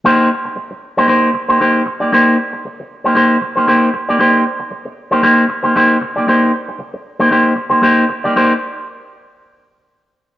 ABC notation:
X:1
M:4/4
L:1/16
Q:"Swing 16ths" 1/4=116
K:Cm
V:1 name="Clean electric guitar"
[B,EGc]2 z4 z [B,EGc] [B,EGc]2 z [B,EGc] [B,EGc]2 z [B,EGd] | [B,EGc]2 z4 z [B,EGc] [B,EGc]2 z [B,EGc] [B,EGc]2 z [B,EGd] | [B,EGc]2 z4 z [B,EGc] [B,EGc]2 z [B,EGc] [B,EGc]2 z [B,EGd] | [B,EGc]2 z4 z [B,EGc] [B,EGc]2 z [B,EGc] [B,EGc]2 z [B,EGd] |
[B,EGc] z12 z3 |]